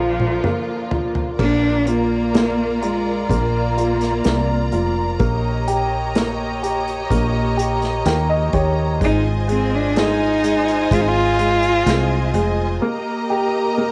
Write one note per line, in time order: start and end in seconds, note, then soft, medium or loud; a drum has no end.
0.00 0.40 A#1 medium
0.00 1.38 D3 medium
0.00 0.94 F3 medium
0.00 1.37 F3 medium
0.00 0.43 A#3 medium
0.00 1.36 A#3 medium
0.00 0.90 F4 soft
0.00 1.37 F4 medium
0.20 mid tom medium
0.44 1.37 A#3 soft
0.44 mid tom medium
0.91 1.38 F4 soft
0.91 floor tom medium
1.15 floor tom medium
1.39 3.26 A#1 medium
1.39 2.33 A#3 medium
1.39 1.89 D4 medium
1.39 5.16 F4 medium
1.39 5.16 A#4 medium
1.39 5.17 D5 medium
1.39 8.97 A#5 medium
1.39 kick medium
1.39 crash medium
1.87 2.84 A#3 medium
1.87 2.81 F4 medium
1.87 closed hi-hat medium
2.34 3.29 A#3 soft
2.34 snare loud
2.34 closed hi-hat medium
2.82 3.31 G#3 medium
2.82 3.76 F4 soft
2.82 closed hi-hat medium
3.29 4.21 A#1 medium
3.29 4.73 A#3 medium
3.29 4.23 A#3 medium
3.29 kick medium
3.29 closed hi-hat medium
3.77 4.71 F4 soft
3.77 closed hi-hat medium
4.01 snare soft
4.01 closed hi-hat soft
4.24 4.70 C2 medium
4.24 5.17 A#3 soft
4.24 snare medium
4.24 closed hi-hat medium
4.72 5.17 F1 medium
4.72 5.19 F4 soft
4.72 closed hi-hat medium
5.19 7.07 A#1 medium
5.19 6.14 A#3 medium
5.19 8.97 G4 medium
5.19 8.97 C#5 medium
5.19 8.97 D#5 medium
5.19 kick medium
5.19 closed hi-hat medium
5.68 6.61 G4 soft
5.68 closed hi-hat medium
6.15 7.09 A#3 soft
6.15 snare medium
6.15 closed hi-hat medium
6.63 7.56 G4 soft
6.63 closed hi-hat medium
6.88 closed hi-hat soft
7.10 8.02 A#1 medium
7.10 8.05 A#3 medium
7.10 kick medium
7.10 closed hi-hat medium
7.57 8.52 G4 medium
7.57 closed hi-hat medium
7.82 snare soft
7.82 closed hi-hat soft
8.05 8.50 D#2 medium
8.05 8.98 A#3 medium
8.05 8.28 G5 medium
8.05 snare medium
8.05 closed hi-hat medium
8.30 8.52 D#5 medium
8.53 9.03 D#2 medium
8.53 9.00 G4 medium
8.53 8.98 C#5 medium
8.53 kick medium
8.53 closed hi-hat soft
9.01 10.88 G#1 medium
9.01 9.46 G#3 medium
9.01 9.24 D#4 medium
9.01 12.78 F4 medium
9.01 12.78 C5 medium
9.01 12.78 D#5 medium
9.01 12.78 G#5 medium
9.01 kick medium
9.01 closed hi-hat medium
9.48 9.94 G#3 medium
9.48 9.77 C4 medium
9.48 closed hi-hat medium
9.75 10.01 D4 medium
9.96 10.42 G#3 medium
9.96 10.95 D#4 medium
9.96 snare medium
9.96 closed hi-hat medium
10.43 10.90 G#3 soft
10.43 closed hi-hat medium
10.68 closed hi-hat soft
10.91 11.83 G#1 medium
10.91 11.37 G#3 medium
10.91 11.03 F4 medium
10.91 kick medium
10.91 closed hi-hat medium
11.01 11.10 D#4 medium
11.08 12.36 F4 loud
11.38 11.85 G#3 soft
11.38 closed hi-hat medium
11.62 closed hi-hat soft
11.86 12.31 C2 medium
11.86 12.32 G#3 medium
11.86 snare medium
11.86 closed hi-hat medium
12.34 12.78 F1 medium
12.34 12.80 G#3 medium
12.34 closed hi-hat medium
12.81 13.92 A#3 medium
12.81 13.76 A#3 medium
12.81 13.92 G4 medium
12.81 13.92 A#4 medium
12.81 13.92 D#5 medium
12.81 13.92 A#5 medium
13.30 13.92 G4 medium
13.78 13.92 A#3 soft